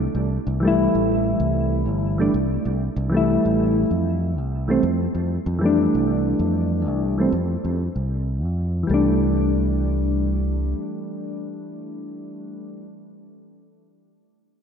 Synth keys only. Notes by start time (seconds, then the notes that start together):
0.60 E3 G3
0.65 A3 E4
2.18 E3 G3 A3 D4
3.10 E3 G3
3.14 A3 E4
4.68 E3 G3 A3 C4
5.59 E3 G3
5.64 A3 D4
7.18 E3 G3 A3 C4
8.83 E3 G3
8.91 A3 D4